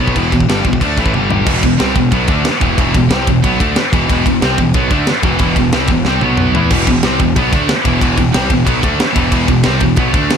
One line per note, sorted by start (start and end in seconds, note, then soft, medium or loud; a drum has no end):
0.00 0.15 B1 loud
0.00 0.15 B2 medium
0.00 0.16 F#3 loud
0.00 0.16 B3 loud
0.08 kick medium
0.16 0.32 E1 loud
0.16 0.32 E2 medium
0.16 0.32 B2 medium
0.16 0.32 E3 loud
0.16 kick medium
0.16 crash medium
0.32 0.47 E1 medium
0.32 0.46 E2 medium
0.32 0.46 B2 medium
0.32 kick medium
0.32 crash medium
0.40 kick medium
0.48 0.64 G1 medium
0.48 0.65 G2 loud
0.48 0.65 D3 loud
0.48 0.65 G3 loud
0.48 snare loud
0.48 crash medium
0.65 0.80 E1 medium
0.65 0.79 E2 medium
0.65 0.79 B2 medium
0.65 kick medium
0.65 crash medium
0.73 kick medium
0.81 0.96 D2 loud
0.81 0.97 D3 medium
0.81 0.98 A3 loud
0.81 0.98 D4 loud
0.81 kick medium
0.81 crash medium
0.97 1.13 A1 loud
0.97 1.14 A2 medium
0.97 1.14 E3 medium
0.97 1.15 A3 loud
0.97 kick medium
0.97 crash medium
1.06 kick medium
1.13 1.44 G1 medium
1.13 1.47 G2 medium
1.13 1.47 D3 medium
1.13 1.47 G3 medium
1.13 high tom medium
1.30 floor tom medium
1.47 1.62 E1 loud
1.47 1.62 E2 medium
1.47 1.63 B2 loud
1.47 1.63 E3 loud
1.47 kick loud
1.47 crash loud
1.63 1.79 E1 medium
1.63 1.77 E2 medium
1.63 1.77 B2 medium
1.63 kick loud
1.63 ride medium
1.79 1.95 C2 medium
1.79 1.95 C3 loud
1.79 1.96 G3 loud
1.79 1.96 C4 loud
1.79 snare loud
1.79 ride loud
1.96 2.11 E1 medium
1.96 2.10 E2 medium
1.96 2.10 B2 medium
1.96 kick medium
1.96 ride medium
2.12 2.27 B1 loud
2.12 2.29 B2 loud
2.12 2.29 F#3 loud
2.12 2.29 B3 loud
2.12 kick medium
2.12 ride medium
2.28 2.44 D2 loud
2.28 2.45 D3 medium
2.28 2.45 A3 medium
2.28 2.46 D4 medium
2.28 kick loud
2.28 ride medium
2.45 snare loud
2.45 ride loud
2.61 2.77 E1 loud
2.61 2.77 E2 loud
2.61 2.78 B2 loud
2.61 2.78 E3 loud
2.61 kick loud
2.61 ride medium
2.78 2.93 E1 loud
2.78 2.94 E2 medium
2.78 2.95 B2 loud
2.78 2.95 E3 loud
2.78 kick loud
2.78 ride loud
2.94 3.09 E1 medium
2.94 3.09 E2 medium
2.94 3.09 B2 medium
2.94 kick medium
2.94 ride medium
3.10 3.26 C2 loud
3.10 3.28 C3 medium
3.10 3.28 G3 loud
3.10 3.28 C4 loud
3.10 snare loud
3.10 ride medium
3.27 3.43 E1 medium
3.27 3.41 E2 medium
3.27 3.41 B2 medium
3.27 kick medium
3.27 ride medium
3.44 3.59 B1 loud
3.44 3.60 B2 loud
3.44 3.60 F#3 loud
3.44 3.61 B3 loud
3.44 kick loud
3.44 ride loud
3.60 3.76 D2 loud
3.60 3.76 D3 loud
3.60 3.76 A3 loud
3.60 3.76 D4 loud
3.60 kick loud
3.60 ride medium
3.76 snare loud
3.76 ride loud
3.93 4.08 E1 loud
3.93 4.09 E2 medium
3.93 4.09 B2 loud
3.93 4.09 E3 loud
3.93 kick loud
3.93 ride medium
4.09 4.24 E1 loud
4.09 4.25 E2 loud
4.09 4.26 B2 loud
4.09 4.26 E3 loud
4.09 kick loud
4.09 ride loud
4.26 4.41 E1 medium
4.26 4.40 E2 medium
4.26 4.40 B2 medium
4.26 kick loud
4.26 ride medium
4.42 4.57 C2 loud
4.42 4.58 C3 loud
4.42 4.58 G3 loud
4.42 4.59 C4 loud
4.42 snare loud
4.42 ride loud
4.58 4.73 E1 medium
4.58 4.72 E2 medium
4.58 4.72 B2 medium
4.58 kick medium
4.58 ride medium
4.74 4.89 B1 medium
4.74 4.91 B2 loud
4.74 4.91 F#3 loud
4.74 4.91 B3 loud
4.74 kick loud
4.74 ride medium
4.91 5.06 D2 loud
4.91 5.07 D3 loud
4.91 5.07 A3 medium
4.91 5.08 D4 loud
4.91 kick loud
4.91 ride medium
5.07 snare loud
5.07 ride loud
5.23 5.39 E1 loud
5.23 5.39 E2 medium
5.23 5.39 B2 loud
5.23 5.40 E3 loud
5.23 kick loud
5.23 ride medium
5.39 5.55 E1 loud
5.39 5.56 E2 loud
5.39 5.56 B2 medium
5.39 5.56 E3 loud
5.39 kick loud
5.39 ride loud
5.56 5.72 E1 medium
5.56 5.70 E2 medium
5.56 5.70 B2 medium
5.56 kick loud
5.56 ride medium
5.72 5.88 C2 medium
5.72 5.89 C3 loud
5.72 5.89 G3 loud
5.72 5.90 C4 loud
5.72 snare loud
5.72 ride medium
5.87 6.04 E1 medium
5.87 6.02 E2 medium
5.87 6.03 B2 medium
5.87 kick medium
5.87 ride medium
6.05 6.21 C2 loud
6.05 6.22 C3 medium
6.05 6.22 G3 loud
6.05 6.22 C4 loud
6.05 snare medium
6.21 6.52 B1 loud
6.21 6.54 B2 medium
6.21 6.54 F#3 medium
6.21 6.54 B3 medium
6.21 high tom medium
6.37 mid tom medium
6.54 6.70 E2 loud
6.54 6.70 E3 loud
6.54 6.71 B3 loud
6.54 6.71 E4 loud
6.54 floor tom loud
6.70 6.86 E1 loud
6.70 6.86 E2 medium
6.70 6.86 B2 loud
6.70 6.87 E3 loud
6.70 kick loud
6.70 crash loud
6.87 7.03 E1 medium
6.87 7.00 E2 medium
6.87 7.00 B2 medium
6.87 kick loud
6.87 ride medium
7.03 7.19 C2 loud
7.03 7.20 C3 loud
7.03 7.20 G3 loud
7.03 7.20 C4 loud
7.03 snare loud
7.03 ride loud
7.19 7.35 E1 medium
7.19 7.33 E2 medium
7.19 7.33 B2 medium
7.19 kick medium
7.19 ride medium
7.36 7.52 B1 loud
7.36 7.52 B2 loud
7.36 7.53 F#3 loud
7.36 7.53 B3 loud
7.36 kick loud
7.36 ride loud
7.52 7.68 D2 loud
7.52 7.69 D3 medium
7.52 7.69 A3 loud
7.52 7.69 D4 loud
7.52 kick loud
7.52 ride medium
7.69 snare loud
7.69 ride loud
7.84 8.01 E1 loud
7.84 7.99 E2 loud
7.84 8.00 B2 loud
7.84 8.00 E3 loud
7.84 kick loud
7.84 ride medium
8.00 8.17 E1 loud
8.00 8.16 E2 medium
8.00 8.16 B2 loud
8.00 8.18 E3 loud
8.00 kick loud
8.00 ride loud
8.17 8.33 E1 medium
8.17 8.31 E2 medium
8.17 8.31 B2 medium
8.17 kick loud
8.17 ride medium
8.34 8.49 C2 loud
8.34 8.51 C3 loud
8.34 8.51 G3 loud
8.34 8.51 C4 loud
8.34 snare loud
8.34 ride loud
8.50 8.66 E1 medium
8.50 8.64 E2 medium
8.50 8.64 B2 medium
8.50 kick loud
8.50 ride medium
8.67 8.82 B1 medium
8.67 8.83 B2 loud
8.67 8.83 F#3 loud
8.67 8.84 B3 loud
8.67 kick loud
8.67 ride loud
8.83 8.99 D2 loud
8.83 8.99 D3 medium
8.83 8.99 A3 loud
8.83 9.00 D4 loud
8.83 kick loud
8.83 ride medium
9.00 snare loud
9.00 ride loud
9.15 9.31 E1 loud
9.15 9.30 E2 loud
9.15 9.31 B2 loud
9.15 9.31 E3 loud
9.15 kick loud
9.15 ride medium
9.31 9.48 E1 loud
9.31 9.48 E2 loud
9.31 9.48 B2 loud
9.31 9.49 E3 loud
9.31 kick loud
9.31 ride loud
9.48 9.64 E1 medium
9.48 9.63 E2 medium
9.48 9.63 B2 medium
9.48 kick loud
9.48 ride medium
9.63 9.81 C2 medium
9.63 9.82 C3 loud
9.63 9.82 G3 loud
9.63 9.82 C4 loud
9.63 snare loud
9.63 ride loud
9.80 9.96 E1 medium
9.80 9.96 E2 medium
9.80 9.96 B2 medium
9.80 kick medium
9.80 ride medium
9.96 10.13 B1 medium
9.96 10.15 B2 loud
9.96 10.15 F#3 loud
9.96 10.15 B3 loud
9.96 kick loud
9.96 ride loud
10.13 10.29 D2 loud
10.13 10.31 D3 loud
10.13 10.31 A3 loud
10.13 10.32 D4 medium
10.13 kick loud
10.13 ride medium
10.30 snare loud
10.30 ride loud